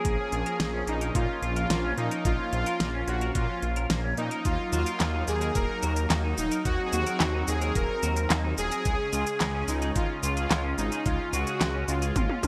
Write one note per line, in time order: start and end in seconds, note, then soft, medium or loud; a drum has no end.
0.00 4.41 F3 medium
0.00 4.41 A#3 medium
0.00 4.41 C#4 medium
0.00 0.91 G#4 loud
0.05 0.17 A#1 loud
0.05 0.14 A#3 loud
0.05 kick loud
0.05 closed hi-hat medium
0.19 0.28 C#4 medium
0.32 0.44 A#1 loud
0.32 0.42 F4 medium
0.32 closed hi-hat medium
0.46 0.55 A#4 medium
0.46 closed hi-hat medium
0.60 0.83 A#1 medium
0.60 0.69 A#3 medium
0.60 snare loud
0.60 closed hi-hat medium
0.74 0.83 C#4 loud
0.87 1.11 A#1 loud
0.87 0.93 A#3 medium
0.87 1.16 D#4 medium
0.87 closed hi-hat medium
1.01 1.10 A#4 medium
1.01 closed hi-hat medium
1.15 1.27 A#2 loud
1.15 1.24 A#3 loud
1.15 1.41 F4 loud
1.15 kick loud
1.15 closed hi-hat loud
1.29 1.38 C#4 medium
1.42 1.66 A#1 medium
1.42 1.99 F4 loud
1.42 1.52 F4 medium
1.42 closed hi-hat medium
1.56 1.65 A#4 medium
1.56 closed hi-hat medium
1.70 1.93 A#1 medium
1.70 1.79 A#3 medium
1.70 snare loud
1.70 closed hi-hat loud
1.84 1.93 C#4 loud
1.98 2.09 A#2 medium
1.98 2.03 A#3 medium
1.98 2.26 D#4 medium
1.98 closed hi-hat medium
2.11 2.20 A#4 medium
2.11 closed hi-hat medium
2.25 2.37 A#1 loud
2.25 2.34 A#3 loud
2.25 2.52 F4 loud
2.25 kick loud
2.25 closed hi-hat medium
2.39 2.48 C#4 medium
2.52 2.64 A#1 loud
2.52 2.62 F4 medium
2.52 3.09 F4 loud
2.52 closed hi-hat medium
2.66 2.76 A#4 medium
2.66 closed hi-hat medium
2.80 3.03 A#1 medium
2.80 2.89 A#3 medium
2.80 snare loud
2.80 closed hi-hat medium
2.94 3.03 C#4 loud
3.08 3.31 A#1 loud
3.08 3.13 A#3 medium
3.08 3.33 F#4 medium
3.08 closed hi-hat medium
3.21 3.31 A#4 medium
3.21 closed hi-hat medium
3.35 3.47 A#2 loud
3.35 3.44 A#3 loud
3.35 3.86 F4 medium
3.35 kick loud
3.35 closed hi-hat loud
3.49 3.58 C#4 medium
3.62 3.86 A#1 medium
3.62 3.72 F4 medium
3.62 closed hi-hat medium
3.76 3.86 A#4 medium
3.76 closed hi-hat medium
3.90 4.14 A#1 medium
3.90 3.99 A#3 medium
3.90 snare loud
3.90 closed hi-hat medium
4.04 4.13 C#4 loud
4.17 4.29 A#2 medium
4.17 4.23 A#3 medium
4.17 4.43 D#4 medium
4.17 closed hi-hat medium
4.31 4.41 A#4 medium
4.31 closed hi-hat medium
4.45 4.57 D#2 medium
4.45 8.82 F#3 medium
4.45 4.54 A#3 loud
4.45 6.63 A#3 medium
4.45 8.82 D#4 medium
4.45 4.71 F4 loud
4.45 kick loud
4.45 closed hi-hat medium
4.45 shaker soft
4.59 4.68 D#4 medium
4.72 4.84 D#2 loud
4.72 5.24 F4 loud
4.72 4.82 F#4 medium
4.72 closed hi-hat medium
4.72 shaker medium
4.86 4.96 A#4 medium
4.86 closed hi-hat medium
4.86 shaker soft
5.00 5.24 D#2 medium
5.00 5.09 A#3 medium
5.00 snare loud
5.00 clap medium
5.00 closed hi-hat medium
5.00 shaker soft
5.14 5.23 D#4 loud
5.28 5.51 D#2 loud
5.28 5.33 A#3 medium
5.28 5.56 G#4 loud
5.28 closed hi-hat medium
5.28 shaker medium
5.41 5.51 A#4 medium
5.41 closed hi-hat medium
5.41 shaker soft
5.55 5.67 D#1 loud
5.55 5.64 A#3 loud
5.55 6.07 A#4 loud
5.55 kick loud
5.55 closed hi-hat medium
5.55 shaker soft
5.69 5.78 D#4 medium
5.83 6.06 D#2 medium
5.83 5.92 F#4 medium
5.83 closed hi-hat medium
5.83 shaker medium
5.96 6.06 A#4 medium
5.96 closed hi-hat medium
5.96 shaker soft
6.10 6.34 D#2 loud
6.10 6.19 A#3 medium
6.10 snare loud
6.10 clap loud
6.10 closed hi-hat medium
6.10 shaker soft
6.24 6.33 D#4 loud
6.38 6.50 D#1 medium
6.38 6.43 A#3 medium
6.38 6.50 D#4 medium
6.38 closed hi-hat medium
6.38 shaker medium
6.51 6.61 A#4 medium
6.51 closed hi-hat medium
6.51 shaker soft
6.65 6.77 D#2 loud
6.65 6.74 A#3 loud
6.65 8.83 C4 medium
6.65 6.84 F#4 loud
6.65 kick loud
6.65 closed hi-hat medium
6.65 shaker soft
6.79 6.88 D#4 medium
6.86 6.93 G#4 medium
6.93 7.05 D#2 loud
6.93 7.02 F#4 medium
6.93 7.50 F#4 loud
6.93 closed hi-hat medium
6.93 shaker medium
7.07 7.16 A#4 medium
7.07 closed hi-hat medium
7.07 shaker soft
7.20 7.44 D#2 medium
7.20 7.29 A#3 medium
7.20 snare loud
7.20 clap medium
7.20 closed hi-hat medium
7.20 shaker soft
7.34 7.43 D#4 loud
7.48 7.71 D#2 loud
7.48 7.53 A#3 medium
7.48 7.74 G#4 loud
7.48 closed hi-hat medium
7.48 shaker medium
7.61 7.71 A#4 medium
7.61 closed hi-hat medium
7.61 shaker soft
7.75 7.87 D#1 loud
7.75 7.85 A#3 loud
7.75 8.27 A#4 loud
7.75 kick loud
7.75 closed hi-hat medium
7.75 shaker soft
7.89 7.98 D#4 medium
8.03 8.26 D#2 medium
8.03 8.12 F#4 medium
8.03 closed hi-hat medium
8.03 shaker medium
8.16 8.26 A#4 medium
8.16 closed hi-hat medium
8.16 shaker soft
8.30 8.54 D#2 medium
8.30 8.40 A#3 medium
8.30 snare loud
8.30 clap medium
8.30 closed hi-hat medium
8.30 shaker soft
8.44 8.53 D#4 loud
8.58 8.70 D#1 medium
8.58 8.63 A#3 medium
8.58 9.72 G#4 loud
8.58 closed hi-hat medium
8.58 shaker medium
8.72 8.81 A#4 medium
8.72 closed hi-hat medium
8.72 shaker soft
8.85 8.97 C#2 loud
8.85 12.47 C#3 medium
8.85 12.47 G#3 medium
8.85 8.95 G#3 loud
8.85 12.47 C#4 medium
8.85 kick loud
8.85 closed hi-hat medium
8.85 shaker soft
8.99 9.08 C#4 medium
9.13 9.25 C#2 loud
9.13 9.22 F4 medium
9.13 closed hi-hat medium
9.13 shaker medium
9.27 9.36 G#4 medium
9.27 closed hi-hat medium
9.27 shaker soft
9.40 9.64 C#2 medium
9.40 9.50 G#3 medium
9.40 snare loud
9.40 clap medium
9.40 closed hi-hat medium
9.40 shaker soft
9.54 9.63 C#4 loud
9.68 9.92 C#2 loud
9.68 9.74 G#3 medium
9.68 9.97 D#4 medium
9.68 closed hi-hat medium
9.68 shaker medium
9.82 9.91 G#4 medium
9.82 closed hi-hat medium
9.82 shaker soft
9.96 10.07 G#1 loud
9.96 10.05 G#3 loud
9.96 10.08 F4 loud
9.96 kick loud
9.96 closed hi-hat medium
9.96 shaker soft
10.09 10.19 C#4 medium
10.23 10.47 C#2 medium
10.23 10.80 F4 loud
10.23 10.32 F4 medium
10.23 closed hi-hat medium
10.23 shaker medium
10.37 10.46 G#4 medium
10.37 closed hi-hat medium
10.37 shaker soft
10.51 10.74 C#2 medium
10.51 10.60 G#3 medium
10.51 snare loud
10.51 clap loud
10.51 closed hi-hat medium
10.51 shaker soft
10.64 10.74 C#4 loud
10.78 10.90 G#1 medium
10.78 10.84 G#3 medium
10.78 11.07 D#4 medium
10.78 closed hi-hat medium
10.78 shaker medium
10.92 11.01 G#4 medium
10.92 closed hi-hat medium
10.92 shaker soft
11.06 11.18 C#2 loud
11.06 11.15 G#3 loud
11.06 11.34 F4 loud
11.06 kick loud
11.06 closed hi-hat medium
11.06 shaker soft
11.20 11.29 C#4 medium
11.33 11.45 C#2 loud
11.33 11.42 F4 medium
11.33 11.90 F#4 loud
11.33 closed hi-hat medium
11.33 shaker medium
11.47 11.56 G#4 medium
11.47 closed hi-hat medium
11.47 shaker soft
11.61 11.84 C#2 medium
11.61 11.70 G#3 medium
11.61 snare loud
11.61 clap loud
11.61 closed hi-hat medium
11.61 shaker soft
11.75 11.84 C#4 loud
11.88 12.12 C#2 loud
11.88 11.94 G#3 medium
11.88 12.47 F4 loud
11.88 closed hi-hat medium
11.88 shaker medium
12.02 12.11 G#4 medium
12.02 closed hi-hat medium
12.02 shaker soft
12.16 12.28 G#1 loud
12.16 12.25 G#3 loud
12.16 kick loud
12.16 closed hi-hat loud
12.16 high tom medium
12.16 shaker soft
12.29 12.39 C#4 medium
12.29 high tom medium
12.43 12.47 C#2 loud
12.43 12.47 F4 medium
12.43 closed hi-hat medium
12.43 high tom medium
12.43 shaker medium